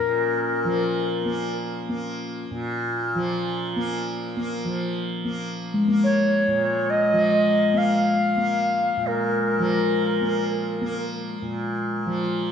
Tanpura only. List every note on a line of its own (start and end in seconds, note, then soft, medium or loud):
0.00 2.51 A#2 soft
0.00 0.64 F3 medium
0.00 1.25 A#3 medium
0.64 3.14 F3 medium
1.25 1.89 A#3 medium
1.89 3.76 A#3 medium
2.51 6.47 A#2 medium
3.15 4.64 F3 medium
3.76 4.37 A#3 medium
4.37 5.25 A#3 medium
4.64 7.12 F3 soft
5.25 5.88 A#3 medium
5.88 7.73 A#3 soft
6.48 8.96 A#2 soft
7.12 9.58 F3 soft
7.73 8.36 A#3 medium
8.36 10.21 A#3 medium
8.97 11.42 A#2 medium
9.59 12.05 F3 medium
10.21 10.81 A#3 medium
10.81 12.52 A#3 medium
11.42 12.52 A#2 medium
12.06 12.52 F3 medium